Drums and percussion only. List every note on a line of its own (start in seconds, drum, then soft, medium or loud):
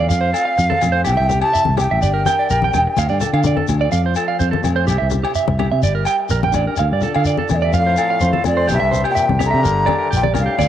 0.10 shekere loud
0.34 low agogo medium
0.34 shekere medium
0.59 shekere loud
0.72 high conga medium
0.81 low conga medium
0.81 low agogo medium
0.81 shekere medium
1.05 low agogo medium
1.05 shekere loud
1.29 low conga medium
1.29 shekere medium
1.42 low agogo medium
1.55 shekere medium
1.65 high conga medium
1.77 low conga medium
1.77 low agogo medium
1.77 shekere medium
2.02 shekere medium
2.26 high conga medium
2.26 low agogo medium
2.26 shekere medium
2.50 shekere loud
2.62 high conga medium
2.74 low conga medium
2.74 low agogo medium
2.74 shekere medium
2.97 high conga medium
2.97 low agogo medium
2.97 shekere loud
3.21 low conga medium
3.21 shekere medium
3.34 low agogo medium
3.44 low conga medium
3.44 shekere medium
3.57 high conga medium
3.68 low conga medium
3.68 low agogo medium
3.68 shekere medium
3.92 shekere loud
4.15 low agogo medium
4.15 shekere medium
4.40 shekere loud
4.53 high conga medium
4.64 low conga medium
4.64 low agogo medium
4.64 shekere medium
4.88 low agogo medium
4.88 shekere loud
5.10 low conga medium
5.10 shekere medium
5.25 low agogo medium
5.35 shekere medium
5.48 high conga medium
5.59 low conga medium
5.59 low agogo medium
5.83 shekere loud
6.05 low agogo medium
6.05 shekere medium
6.29 shekere loud
6.43 high conga medium
6.53 low conga medium
6.53 low agogo medium
6.53 shekere medium
6.77 low agogo medium
6.77 shekere medium
7.01 low conga medium
7.01 shekere medium
7.14 low agogo medium
7.25 shekere medium
7.37 high conga medium
7.49 low conga medium
7.49 low agogo medium
7.49 shekere medium
7.73 shekere medium
7.97 low agogo medium
7.97 shekere medium
8.20 shekere medium
8.33 high conga medium
8.44 low conga medium
8.44 low agogo medium
8.44 shekere medium
8.69 low agogo medium
8.69 shekere medium
8.92 low conga medium
8.92 shekere medium
9.05 low agogo medium
9.16 shekere medium
9.29 high conga medium
9.40 low conga medium
9.40 low agogo medium
9.40 shekere medium
9.65 shekere medium
9.87 high conga medium
9.87 low agogo medium
10.13 shekere medium
10.24 high conga medium
10.34 low conga medium
10.34 low agogo medium
10.34 shekere medium
10.59 high conga medium
10.59 low agogo medium
10.59 shekere medium